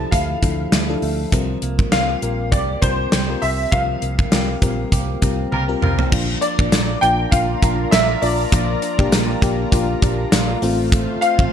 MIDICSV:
0, 0, Header, 1, 8, 480
1, 0, Start_track
1, 0, Tempo, 600000
1, 1059, Time_signature, 4, 2, 24, 8
1, 9222, End_track
2, 0, Start_track
2, 0, Title_t, "Grand piano"
2, 0, Program_c, 0, 0
2, 0, Note_on_c, 0, 81, 97
2, 90, Note_on_c, 0, 77, 86
2, 110, Note_off_c, 0, 81, 0
2, 1023, Note_off_c, 0, 77, 0
2, 1535, Note_on_c, 0, 77, 106
2, 1985, Note_off_c, 0, 77, 0
2, 2013, Note_on_c, 0, 74, 91
2, 2253, Note_on_c, 0, 72, 89
2, 2264, Note_off_c, 0, 74, 0
2, 2734, Note_on_c, 0, 76, 94
2, 2751, Note_off_c, 0, 72, 0
2, 2972, Note_on_c, 0, 77, 94
2, 2984, Note_off_c, 0, 76, 0
2, 4384, Note_off_c, 0, 77, 0
2, 5131, Note_on_c, 0, 74, 106
2, 5610, Note_on_c, 0, 79, 107
2, 5630, Note_off_c, 0, 74, 0
2, 5851, Note_on_c, 0, 77, 100
2, 5862, Note_off_c, 0, 79, 0
2, 6331, Note_on_c, 0, 76, 96
2, 6350, Note_off_c, 0, 77, 0
2, 6573, Note_on_c, 0, 74, 87
2, 6582, Note_off_c, 0, 76, 0
2, 7504, Note_off_c, 0, 74, 0
2, 8970, Note_on_c, 0, 77, 104
2, 9222, Note_off_c, 0, 77, 0
2, 9222, End_track
3, 0, Start_track
3, 0, Title_t, "Analog synth pad"
3, 0, Program_c, 1, 89
3, 4901, Note_on_c, 1, 65, 84
3, 4901, Note_on_c, 1, 82, 94
3, 4902, Note_on_c, 1, 70, 75
3, 4902, Note_on_c, 1, 74, 78
3, 8468, Note_off_c, 1, 65, 0
3, 8468, Note_off_c, 1, 70, 0
3, 8468, Note_off_c, 1, 82, 0
3, 8469, Note_off_c, 1, 74, 0
3, 8500, Note_on_c, 1, 57, 74
3, 8500, Note_on_c, 1, 65, 88
3, 8500, Note_on_c, 1, 72, 72
3, 8501, Note_on_c, 1, 77, 94
3, 9222, Note_off_c, 1, 57, 0
3, 9222, Note_off_c, 1, 65, 0
3, 9222, Note_off_c, 1, 72, 0
3, 9222, Note_off_c, 1, 77, 0
3, 9222, End_track
4, 0, Start_track
4, 0, Title_t, "Horn section"
4, 0, Program_c, 2, 61
4, 4419, Note_on_c, 2, 55, 85
4, 4419, Note_on_c, 2, 65, 90
4, 4419, Note_on_c, 2, 70, 104
4, 4503, Note_off_c, 2, 55, 0
4, 4503, Note_off_c, 2, 65, 0
4, 4503, Note_off_c, 2, 70, 0
4, 4659, Note_on_c, 2, 55, 84
4, 4659, Note_on_c, 2, 65, 87
4, 4659, Note_on_c, 2, 70, 94
4, 4812, Note_off_c, 2, 55, 0
4, 4812, Note_off_c, 2, 65, 0
4, 4812, Note_off_c, 2, 70, 0
4, 9222, End_track
5, 0, Start_track
5, 0, Title_t, "FM electric piano"
5, 0, Program_c, 3, 5
5, 0, Control_c, 3, 64, 127
5, 0, Note_on_c, 3, 53, 73
5, 0, Note_on_c, 3, 62, 65
5, 0, Note_on_c, 3, 64, 66
5, 0, Note_on_c, 3, 67, 95
5, 0, Note_on_c, 3, 69, 83
5, 176, Note_off_c, 3, 53, 0
5, 178, Note_off_c, 3, 62, 0
5, 180, Note_off_c, 3, 64, 0
5, 181, Note_off_c, 3, 69, 0
5, 336, Note_on_c, 3, 53, 67
5, 339, Note_on_c, 3, 62, 62
5, 342, Note_on_c, 3, 64, 64
5, 344, Note_on_c, 3, 69, 77
5, 572, Note_off_c, 3, 53, 0
5, 573, Note_off_c, 3, 62, 0
5, 575, Note_off_c, 3, 64, 0
5, 576, Note_off_c, 3, 69, 0
5, 707, Note_on_c, 3, 53, 88
5, 711, Note_on_c, 3, 62, 83
5, 713, Note_on_c, 3, 64, 82
5, 717, Note_on_c, 3, 69, 95
5, 942, Note_off_c, 3, 53, 0
5, 944, Note_off_c, 3, 62, 0
5, 945, Note_off_c, 3, 64, 0
5, 947, Note_off_c, 3, 69, 0
5, 1057, Note_on_c, 3, 55, 79
5, 1059, Note_on_c, 3, 60, 74
5, 1062, Note_on_c, 3, 65, 70
5, 1065, Note_on_c, 3, 70, 84
5, 1068, Control_c, 3, 64, 0
5, 1075, Note_off_c, 3, 67, 0
5, 1204, Control_c, 3, 64, 127
5, 1377, Note_off_c, 3, 55, 0
5, 1378, Note_off_c, 3, 60, 0
5, 1379, Note_off_c, 3, 65, 0
5, 1381, Note_off_c, 3, 70, 0
5, 1535, Note_on_c, 3, 55, 70
5, 1537, Note_on_c, 3, 60, 66
5, 1541, Note_on_c, 3, 65, 65
5, 1544, Note_on_c, 3, 70, 74
5, 1701, Note_off_c, 3, 55, 0
5, 1702, Note_off_c, 3, 60, 0
5, 1704, Note_off_c, 3, 65, 0
5, 1706, Note_off_c, 3, 70, 0
5, 1773, Note_on_c, 3, 55, 69
5, 1777, Note_on_c, 3, 60, 64
5, 1779, Note_on_c, 3, 65, 66
5, 1783, Note_on_c, 3, 70, 82
5, 2095, Note_off_c, 3, 55, 0
5, 2097, Note_off_c, 3, 60, 0
5, 2098, Note_off_c, 3, 65, 0
5, 2100, Note_off_c, 3, 70, 0
5, 2256, Note_on_c, 3, 55, 70
5, 2258, Note_on_c, 3, 60, 64
5, 2262, Note_on_c, 3, 65, 61
5, 2264, Note_on_c, 3, 70, 74
5, 2492, Note_off_c, 3, 55, 0
5, 2493, Note_off_c, 3, 60, 0
5, 2495, Note_off_c, 3, 65, 0
5, 2496, Note_off_c, 3, 70, 0
5, 2626, Note_on_c, 3, 55, 76
5, 2630, Note_on_c, 3, 60, 65
5, 2632, Note_on_c, 3, 65, 67
5, 2636, Note_on_c, 3, 70, 79
5, 2862, Note_off_c, 3, 55, 0
5, 2863, Note_off_c, 3, 60, 0
5, 2865, Note_off_c, 3, 65, 0
5, 2867, Note_off_c, 3, 70, 0
5, 2974, Note_on_c, 3, 55, 69
5, 2977, Note_on_c, 3, 60, 63
5, 2981, Note_on_c, 3, 65, 59
5, 2984, Note_on_c, 3, 70, 77
5, 3295, Note_off_c, 3, 55, 0
5, 3297, Note_off_c, 3, 60, 0
5, 3299, Note_off_c, 3, 65, 0
5, 3300, Note_off_c, 3, 70, 0
5, 3453, Note_on_c, 3, 55, 68
5, 3457, Note_on_c, 3, 60, 63
5, 3460, Note_on_c, 3, 65, 66
5, 3463, Note_on_c, 3, 70, 75
5, 3620, Note_off_c, 3, 55, 0
5, 3622, Note_off_c, 3, 60, 0
5, 3624, Note_off_c, 3, 65, 0
5, 3626, Note_off_c, 3, 70, 0
5, 3693, Note_on_c, 3, 55, 88
5, 3697, Note_on_c, 3, 60, 80
5, 3700, Note_on_c, 3, 65, 79
5, 3703, Note_on_c, 3, 70, 88
5, 4015, Note_off_c, 3, 55, 0
5, 4017, Note_off_c, 3, 60, 0
5, 4018, Note_off_c, 3, 65, 0
5, 4020, Note_off_c, 3, 70, 0
5, 4172, Note_on_c, 3, 55, 80
5, 4174, Note_on_c, 3, 60, 74
5, 4178, Note_on_c, 3, 65, 72
5, 4182, Note_on_c, 3, 70, 86
5, 4410, Note_off_c, 3, 55, 0
5, 4411, Note_off_c, 3, 60, 0
5, 4413, Note_off_c, 3, 65, 0
5, 4415, Note_off_c, 3, 70, 0
5, 4543, Note_on_c, 3, 55, 84
5, 4546, Note_on_c, 3, 60, 82
5, 4548, Note_on_c, 3, 65, 76
5, 4552, Note_on_c, 3, 70, 97
5, 4780, Note_off_c, 3, 55, 0
5, 4782, Note_off_c, 3, 60, 0
5, 4783, Note_off_c, 3, 65, 0
5, 4785, Note_off_c, 3, 70, 0
5, 4895, Note_on_c, 3, 58, 85
5, 4901, Note_on_c, 3, 62, 76
5, 4904, Note_on_c, 3, 65, 89
5, 4911, Control_c, 3, 64, 0
5, 5052, Control_c, 3, 64, 127
5, 5132, Note_off_c, 3, 58, 0
5, 5134, Note_off_c, 3, 62, 0
5, 5136, Note_off_c, 3, 65, 0
5, 5269, Note_on_c, 3, 58, 77
5, 5273, Note_on_c, 3, 62, 70
5, 5277, Note_on_c, 3, 65, 79
5, 5503, Note_off_c, 3, 58, 0
5, 5505, Note_off_c, 3, 62, 0
5, 5507, Note_off_c, 3, 65, 0
5, 5617, Note_on_c, 3, 58, 76
5, 5622, Note_on_c, 3, 62, 72
5, 5627, Note_on_c, 3, 65, 85
5, 5783, Note_off_c, 3, 58, 0
5, 5785, Note_off_c, 3, 62, 0
5, 5787, Note_off_c, 3, 65, 0
5, 5857, Note_on_c, 3, 58, 80
5, 5861, Note_on_c, 3, 62, 70
5, 5867, Note_on_c, 3, 65, 89
5, 6022, Note_off_c, 3, 58, 0
5, 6025, Note_off_c, 3, 62, 0
5, 6027, Note_off_c, 3, 65, 0
5, 6098, Note_on_c, 3, 58, 75
5, 6104, Note_on_c, 3, 62, 69
5, 6108, Note_on_c, 3, 65, 83
5, 6417, Note_off_c, 3, 58, 0
5, 6420, Note_off_c, 3, 62, 0
5, 6422, Note_off_c, 3, 65, 0
5, 6576, Note_on_c, 3, 58, 75
5, 6581, Note_on_c, 3, 62, 72
5, 6586, Note_on_c, 3, 65, 89
5, 6742, Note_off_c, 3, 58, 0
5, 6744, Note_off_c, 3, 62, 0
5, 6747, Note_off_c, 3, 65, 0
5, 6814, Note_on_c, 3, 58, 72
5, 6818, Note_on_c, 3, 62, 65
5, 6824, Note_on_c, 3, 65, 84
5, 7051, Note_off_c, 3, 58, 0
5, 7053, Note_off_c, 3, 62, 0
5, 7056, Note_off_c, 3, 65, 0
5, 7185, Note_on_c, 3, 58, 86
5, 7190, Note_on_c, 3, 62, 82
5, 7195, Note_on_c, 3, 67, 98
5, 7421, Note_off_c, 3, 58, 0
5, 7424, Note_off_c, 3, 62, 0
5, 7426, Note_off_c, 3, 67, 0
5, 7532, Note_on_c, 3, 58, 91
5, 7537, Note_on_c, 3, 62, 90
5, 7542, Note_on_c, 3, 67, 106
5, 7700, Note_off_c, 3, 58, 0
5, 7702, Note_off_c, 3, 62, 0
5, 7705, Note_off_c, 3, 67, 0
5, 7774, Note_on_c, 3, 58, 94
5, 7779, Note_on_c, 3, 62, 83
5, 7783, Note_on_c, 3, 65, 102
5, 7941, Note_off_c, 3, 58, 0
5, 7944, Note_off_c, 3, 62, 0
5, 7945, Note_off_c, 3, 65, 0
5, 8021, Note_on_c, 3, 74, 65
5, 8025, Note_on_c, 3, 65, 56
5, 8248, Note_off_c, 3, 74, 0
5, 8251, Note_off_c, 3, 65, 0
5, 8261, Note_on_c, 3, 70, 74
5, 8266, Note_on_c, 3, 62, 59
5, 8386, Note_off_c, 3, 70, 0
5, 8389, Note_off_c, 3, 62, 0
5, 8394, Note_on_c, 3, 65, 75
5, 8398, Note_on_c, 3, 57, 60
5, 8487, Note_off_c, 3, 57, 0
5, 8496, Note_off_c, 3, 65, 0
5, 8496, Note_on_c, 3, 57, 104
5, 8501, Note_on_c, 3, 60, 92
5, 8506, Note_on_c, 3, 65, 110
5, 8510, Control_c, 3, 64, 0
5, 8671, Control_c, 3, 64, 127
5, 8978, Note_off_c, 3, 57, 0
5, 8980, Note_off_c, 3, 60, 0
5, 8983, Note_off_c, 3, 65, 0
5, 9107, Note_on_c, 3, 57, 76
5, 9112, Note_on_c, 3, 60, 74
5, 9116, Note_on_c, 3, 65, 87
5, 9222, Note_off_c, 3, 57, 0
5, 9222, Note_off_c, 3, 60, 0
5, 9222, Note_off_c, 3, 65, 0
5, 9222, End_track
6, 0, Start_track
6, 0, Title_t, "Clean electric guitar"
6, 0, Program_c, 4, 27
6, 0, Note_on_c, 4, 53, 58
6, 0, Note_on_c, 4, 57, 61
6, 0, Note_on_c, 4, 64, 63
6, 91, Note_off_c, 4, 64, 0
6, 100, Note_on_c, 4, 64, 68
6, 332, Note_off_c, 4, 57, 0
6, 342, Note_on_c, 4, 57, 60
6, 573, Note_off_c, 4, 64, 0
6, 583, Note_on_c, 4, 64, 66
6, 812, Note_off_c, 4, 57, 0
6, 821, Note_on_c, 4, 57, 62
6, 1058, Note_off_c, 4, 53, 0
6, 1061, Note_on_c, 4, 53, 73
6, 1113, Note_off_c, 4, 57, 0
6, 1114, Note_off_c, 4, 64, 0
6, 1303, Note_on_c, 4, 58, 57
6, 1543, Note_on_c, 4, 65, 65
6, 1674, Note_off_c, 4, 65, 0
6, 1674, Note_on_c, 4, 67, 59
6, 1779, Note_off_c, 4, 58, 0
6, 1782, Note_on_c, 4, 58, 57
6, 2012, Note_off_c, 4, 67, 0
6, 2022, Note_on_c, 4, 67, 63
6, 2261, Note_on_c, 4, 60, 61
6, 2490, Note_off_c, 4, 67, 0
6, 2499, Note_on_c, 4, 67, 67
6, 2731, Note_off_c, 4, 60, 0
6, 2741, Note_on_c, 4, 60, 58
6, 2976, Note_off_c, 4, 53, 0
6, 2979, Note_on_c, 4, 53, 74
6, 3216, Note_off_c, 4, 58, 0
6, 3219, Note_on_c, 4, 58, 61
6, 3451, Note_off_c, 4, 67, 0
6, 3461, Note_on_c, 4, 67, 62
6, 3696, Note_off_c, 4, 58, 0
6, 3699, Note_on_c, 4, 58, 59
6, 3929, Note_off_c, 4, 67, 0
6, 3939, Note_on_c, 4, 67, 63
6, 4169, Note_off_c, 4, 60, 0
6, 4178, Note_on_c, 4, 60, 60
6, 4410, Note_off_c, 4, 67, 0
6, 4420, Note_on_c, 4, 67, 63
6, 4652, Note_off_c, 4, 60, 0
6, 4662, Note_on_c, 4, 60, 56
6, 4896, Note_off_c, 4, 53, 0
6, 4899, Note_on_c, 4, 53, 83
6, 4952, Note_off_c, 4, 67, 0
6, 4953, Note_off_c, 4, 60, 0
6, 5141, Note_on_c, 4, 62, 59
6, 5377, Note_off_c, 4, 58, 0
6, 5380, Note_on_c, 4, 58, 64
6, 5610, Note_off_c, 4, 62, 0
6, 5620, Note_on_c, 4, 62, 60
6, 5858, Note_on_c, 4, 65, 75
6, 6089, Note_off_c, 4, 62, 0
6, 6099, Note_on_c, 4, 62, 68
6, 6336, Note_off_c, 4, 65, 0
6, 6340, Note_on_c, 4, 65, 70
6, 6571, Note_off_c, 4, 62, 0
6, 6580, Note_on_c, 4, 62, 62
6, 6817, Note_off_c, 4, 53, 0
6, 6820, Note_on_c, 4, 53, 85
6, 7051, Note_off_c, 4, 62, 0
6, 7061, Note_on_c, 4, 62, 61
6, 7292, Note_off_c, 4, 58, 0
6, 7302, Note_on_c, 4, 58, 64
6, 7532, Note_off_c, 4, 62, 0
6, 7542, Note_on_c, 4, 62, 65
6, 7778, Note_off_c, 4, 65, 0
6, 7781, Note_on_c, 4, 65, 74
6, 8010, Note_off_c, 4, 62, 0
6, 8020, Note_on_c, 4, 62, 65
6, 8257, Note_off_c, 4, 65, 0
6, 8260, Note_on_c, 4, 65, 76
6, 8497, Note_off_c, 4, 58, 0
6, 8501, Note_on_c, 4, 57, 84
6, 8553, Note_off_c, 4, 62, 0
6, 8731, Note_off_c, 4, 57, 0
6, 8741, Note_on_c, 4, 57, 90
6, 8982, Note_on_c, 4, 60, 67
6, 9213, Note_off_c, 4, 57, 0
6, 9222, Note_off_c, 4, 53, 0
6, 9222, Note_off_c, 4, 60, 0
6, 9222, Note_off_c, 4, 65, 0
6, 9222, End_track
7, 0, Start_track
7, 0, Title_t, "Fingered electric bass"
7, 0, Program_c, 5, 33
7, 99, Note_on_c, 5, 38, 104
7, 272, Note_off_c, 5, 38, 0
7, 340, Note_on_c, 5, 38, 93
7, 513, Note_off_c, 5, 38, 0
7, 578, Note_on_c, 5, 38, 93
7, 752, Note_off_c, 5, 38, 0
7, 818, Note_on_c, 5, 38, 90
7, 991, Note_off_c, 5, 38, 0
7, 1058, Note_on_c, 5, 36, 100
7, 1232, Note_off_c, 5, 36, 0
7, 1298, Note_on_c, 5, 36, 99
7, 1471, Note_off_c, 5, 36, 0
7, 1539, Note_on_c, 5, 36, 85
7, 1712, Note_off_c, 5, 36, 0
7, 1779, Note_on_c, 5, 34, 85
7, 2017, Note_off_c, 5, 34, 0
7, 2017, Note_on_c, 5, 36, 98
7, 2191, Note_off_c, 5, 36, 0
7, 2259, Note_on_c, 5, 36, 89
7, 2432, Note_off_c, 5, 36, 0
7, 2500, Note_on_c, 5, 36, 96
7, 2672, Note_off_c, 5, 36, 0
7, 2739, Note_on_c, 5, 36, 92
7, 2912, Note_off_c, 5, 36, 0
7, 2978, Note_on_c, 5, 36, 100
7, 3151, Note_off_c, 5, 36, 0
7, 3219, Note_on_c, 5, 36, 97
7, 3392, Note_off_c, 5, 36, 0
7, 3459, Note_on_c, 5, 36, 94
7, 3632, Note_off_c, 5, 36, 0
7, 3696, Note_on_c, 5, 34, 80
7, 3870, Note_off_c, 5, 34, 0
7, 3937, Note_on_c, 5, 36, 96
7, 4111, Note_off_c, 5, 36, 0
7, 4178, Note_on_c, 5, 36, 89
7, 4351, Note_off_c, 5, 36, 0
7, 4419, Note_on_c, 5, 36, 95
7, 4592, Note_off_c, 5, 36, 0
7, 4658, Note_on_c, 5, 36, 100
7, 4831, Note_off_c, 5, 36, 0
7, 4897, Note_on_c, 5, 34, 111
7, 5071, Note_off_c, 5, 34, 0
7, 5270, Note_on_c, 5, 34, 97
7, 5348, Note_off_c, 5, 34, 0
7, 5379, Note_on_c, 5, 34, 104
7, 5552, Note_off_c, 5, 34, 0
7, 5620, Note_on_c, 5, 34, 104
7, 5793, Note_off_c, 5, 34, 0
7, 5858, Note_on_c, 5, 34, 101
7, 6031, Note_off_c, 5, 34, 0
7, 6099, Note_on_c, 5, 34, 104
7, 6272, Note_off_c, 5, 34, 0
7, 6338, Note_on_c, 5, 34, 98
7, 6511, Note_off_c, 5, 34, 0
7, 6578, Note_on_c, 5, 34, 98
7, 6751, Note_off_c, 5, 34, 0
7, 6818, Note_on_c, 5, 34, 110
7, 6991, Note_off_c, 5, 34, 0
7, 7190, Note_on_c, 5, 34, 94
7, 7269, Note_off_c, 5, 34, 0
7, 7297, Note_on_c, 5, 34, 94
7, 7471, Note_off_c, 5, 34, 0
7, 7538, Note_on_c, 5, 34, 100
7, 7711, Note_off_c, 5, 34, 0
7, 7778, Note_on_c, 5, 34, 106
7, 7951, Note_off_c, 5, 34, 0
7, 8019, Note_on_c, 5, 34, 97
7, 8192, Note_off_c, 5, 34, 0
7, 8258, Note_on_c, 5, 34, 108
7, 8431, Note_off_c, 5, 34, 0
7, 8498, Note_on_c, 5, 33, 102
7, 8844, Note_off_c, 5, 33, 0
7, 9111, Note_on_c, 5, 33, 98
7, 9189, Note_off_c, 5, 33, 0
7, 9222, End_track
8, 0, Start_track
8, 0, Title_t, "Drums"
8, 99, Note_on_c, 9, 36, 88
8, 102, Note_on_c, 9, 42, 85
8, 179, Note_off_c, 9, 36, 0
8, 182, Note_off_c, 9, 42, 0
8, 340, Note_on_c, 9, 42, 67
8, 341, Note_on_c, 9, 36, 80
8, 420, Note_off_c, 9, 42, 0
8, 421, Note_off_c, 9, 36, 0
8, 578, Note_on_c, 9, 38, 111
8, 579, Note_on_c, 9, 42, 81
8, 658, Note_off_c, 9, 38, 0
8, 659, Note_off_c, 9, 42, 0
8, 818, Note_on_c, 9, 46, 61
8, 898, Note_off_c, 9, 46, 0
8, 1059, Note_on_c, 9, 36, 97
8, 1059, Note_on_c, 9, 42, 85
8, 1139, Note_off_c, 9, 36, 0
8, 1139, Note_off_c, 9, 42, 0
8, 1297, Note_on_c, 9, 42, 74
8, 1377, Note_off_c, 9, 42, 0
8, 1431, Note_on_c, 9, 36, 88
8, 1511, Note_off_c, 9, 36, 0
8, 1535, Note_on_c, 9, 42, 82
8, 1536, Note_on_c, 9, 38, 112
8, 1615, Note_off_c, 9, 42, 0
8, 1616, Note_off_c, 9, 38, 0
8, 1779, Note_on_c, 9, 42, 62
8, 1859, Note_off_c, 9, 42, 0
8, 2018, Note_on_c, 9, 36, 89
8, 2019, Note_on_c, 9, 42, 82
8, 2098, Note_off_c, 9, 36, 0
8, 2099, Note_off_c, 9, 42, 0
8, 2258, Note_on_c, 9, 42, 67
8, 2259, Note_on_c, 9, 36, 83
8, 2338, Note_off_c, 9, 42, 0
8, 2339, Note_off_c, 9, 36, 0
8, 2497, Note_on_c, 9, 38, 109
8, 2498, Note_on_c, 9, 42, 82
8, 2577, Note_off_c, 9, 38, 0
8, 2578, Note_off_c, 9, 42, 0
8, 2737, Note_on_c, 9, 46, 62
8, 2817, Note_off_c, 9, 46, 0
8, 2978, Note_on_c, 9, 36, 105
8, 2978, Note_on_c, 9, 42, 82
8, 3058, Note_off_c, 9, 36, 0
8, 3058, Note_off_c, 9, 42, 0
8, 3216, Note_on_c, 9, 42, 72
8, 3296, Note_off_c, 9, 42, 0
8, 3351, Note_on_c, 9, 36, 88
8, 3431, Note_off_c, 9, 36, 0
8, 3454, Note_on_c, 9, 42, 84
8, 3456, Note_on_c, 9, 38, 112
8, 3534, Note_off_c, 9, 42, 0
8, 3536, Note_off_c, 9, 38, 0
8, 3696, Note_on_c, 9, 36, 93
8, 3697, Note_on_c, 9, 42, 64
8, 3776, Note_off_c, 9, 36, 0
8, 3777, Note_off_c, 9, 42, 0
8, 3937, Note_on_c, 9, 36, 86
8, 3939, Note_on_c, 9, 42, 85
8, 4017, Note_off_c, 9, 36, 0
8, 4019, Note_off_c, 9, 42, 0
8, 4176, Note_on_c, 9, 42, 66
8, 4179, Note_on_c, 9, 36, 84
8, 4256, Note_off_c, 9, 42, 0
8, 4259, Note_off_c, 9, 36, 0
8, 4418, Note_on_c, 9, 48, 53
8, 4498, Note_off_c, 9, 48, 0
8, 4659, Note_on_c, 9, 45, 79
8, 4739, Note_off_c, 9, 45, 0
8, 4789, Note_on_c, 9, 43, 84
8, 4869, Note_off_c, 9, 43, 0
8, 4898, Note_on_c, 9, 36, 113
8, 4898, Note_on_c, 9, 49, 93
8, 4978, Note_off_c, 9, 36, 0
8, 4978, Note_off_c, 9, 49, 0
8, 5137, Note_on_c, 9, 42, 78
8, 5217, Note_off_c, 9, 42, 0
8, 5271, Note_on_c, 9, 36, 98
8, 5351, Note_off_c, 9, 36, 0
8, 5378, Note_on_c, 9, 42, 89
8, 5379, Note_on_c, 9, 38, 118
8, 5380, Note_on_c, 9, 54, 58
8, 5458, Note_off_c, 9, 42, 0
8, 5459, Note_off_c, 9, 38, 0
8, 5460, Note_off_c, 9, 54, 0
8, 5622, Note_on_c, 9, 42, 70
8, 5702, Note_off_c, 9, 42, 0
8, 5858, Note_on_c, 9, 36, 96
8, 5861, Note_on_c, 9, 42, 90
8, 5938, Note_off_c, 9, 36, 0
8, 5941, Note_off_c, 9, 42, 0
8, 6100, Note_on_c, 9, 36, 91
8, 6100, Note_on_c, 9, 42, 76
8, 6180, Note_off_c, 9, 36, 0
8, 6180, Note_off_c, 9, 42, 0
8, 6339, Note_on_c, 9, 38, 115
8, 6340, Note_on_c, 9, 42, 93
8, 6342, Note_on_c, 9, 54, 69
8, 6419, Note_off_c, 9, 38, 0
8, 6420, Note_off_c, 9, 42, 0
8, 6422, Note_off_c, 9, 54, 0
8, 6579, Note_on_c, 9, 46, 66
8, 6659, Note_off_c, 9, 46, 0
8, 6819, Note_on_c, 9, 36, 107
8, 6821, Note_on_c, 9, 42, 90
8, 6899, Note_off_c, 9, 36, 0
8, 6901, Note_off_c, 9, 42, 0
8, 7057, Note_on_c, 9, 42, 75
8, 7137, Note_off_c, 9, 42, 0
8, 7191, Note_on_c, 9, 36, 98
8, 7271, Note_off_c, 9, 36, 0
8, 7298, Note_on_c, 9, 42, 91
8, 7299, Note_on_c, 9, 38, 121
8, 7300, Note_on_c, 9, 54, 59
8, 7378, Note_off_c, 9, 42, 0
8, 7379, Note_off_c, 9, 38, 0
8, 7380, Note_off_c, 9, 54, 0
8, 7538, Note_on_c, 9, 36, 104
8, 7542, Note_on_c, 9, 42, 74
8, 7618, Note_off_c, 9, 36, 0
8, 7622, Note_off_c, 9, 42, 0
8, 7778, Note_on_c, 9, 36, 95
8, 7782, Note_on_c, 9, 42, 92
8, 7858, Note_off_c, 9, 36, 0
8, 7862, Note_off_c, 9, 42, 0
8, 8018, Note_on_c, 9, 42, 77
8, 8019, Note_on_c, 9, 36, 94
8, 8098, Note_off_c, 9, 42, 0
8, 8099, Note_off_c, 9, 36, 0
8, 8257, Note_on_c, 9, 38, 112
8, 8258, Note_on_c, 9, 42, 90
8, 8260, Note_on_c, 9, 54, 68
8, 8337, Note_off_c, 9, 38, 0
8, 8338, Note_off_c, 9, 42, 0
8, 8340, Note_off_c, 9, 54, 0
8, 8497, Note_on_c, 9, 46, 64
8, 8577, Note_off_c, 9, 46, 0
8, 8738, Note_on_c, 9, 36, 111
8, 8738, Note_on_c, 9, 42, 90
8, 8818, Note_off_c, 9, 36, 0
8, 8818, Note_off_c, 9, 42, 0
8, 8977, Note_on_c, 9, 42, 81
8, 9057, Note_off_c, 9, 42, 0
8, 9111, Note_on_c, 9, 36, 104
8, 9191, Note_off_c, 9, 36, 0
8, 9222, End_track
0, 0, End_of_file